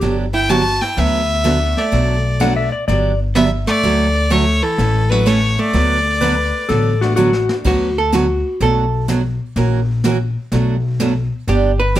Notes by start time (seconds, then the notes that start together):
Already playing: G4
0.01 G1 D3 F#3 B3 D4 G4, brush sweep, snare
0.34 E4 G5
0.49 D3 F#3 B3 D4 F#4 G4 A5, snare, hi-hat pedal
0.81 E4 G5, snare
0.97 D2 D3 F#3 B3 F#4 B4 E5, brush sweep, snare
1.44 D3 F#3 A3 B3 D4 F#4 B4, snare, hi-hat pedal
1.77 A3 D5, snare
1.92 B1 B2 F#3 A3 D4 F#4, brush sweep, snare
2.40 B2 F#3 A3 B3 D4 F#4 F#5, snare, hi-hat pedal
2.56 E5
2.72 D5
2.88 G1 D3 F#3 B3 D4 G4 D5, brush sweep, snare
3.35 D3 F#3 B3 D4 G4 E5, snare, hi-hat pedal
3.67 A3 D5
3.83 D2 D3 F#3 A3 C#4 F#4, brush sweep, snare
4.30 D3 F#3 A3 C#4 F#4 C#5, snare, hi-hat pedal
4.63 E3 A4
4.78 A1 A3 C#4 E4 B4, brush sweep, snare
5.10 F#3 A3 B3 C#4 E4 B4
5.26 A3 C#4 E4 B4 C#5, snare, hi-hat pedal
5.59 A3 D5
5.73 D2 D3 F#3 B3 F#4 B4, brush sweep, snare
6.21 D3 F#3 B3 F#4 B4, snare, hi-hat pedal
6.69 A1 D3 F#3 B3 F#4 A4 B4, brush sweep, snare
7.01 A3 B3 D4 F#4, snare
7.16 D3 F#3 B3 F#4 B4, hi-hat pedal
7.33 snare
7.49 snare
7.64 D2 D3 F#3 B3 F#4 B4, brush sweep, kick, snare, crash
7.98 A4
8.12 D3 F#3 B3 F#4 B4, snare, hi-hat pedal
8.60 B1 B2 F#3 A3 D4 F#4 A4, brush sweep, snare
9.08 B2 F#3 A3 D4 F#4, snare, hi-hat pedal
9.56 A#1 E3 A#3 C#4 F#4 A#4, brush sweep, snare
10.04 E3 A#3 C#4 F#4 A#4, snare, hi-hat pedal
10.52 B1 B2 F#3 A3 D4 F#4, brush sweep, snare
11.00 B2 F#3 A3 D4 F#4, snare, hi-hat pedal
11.47 G1 D3 G3 B3 D4 G4, brush sweep, snare
11.80 B4
11.95 D3 G3 B3 D4 G4, snare, hi-hat pedal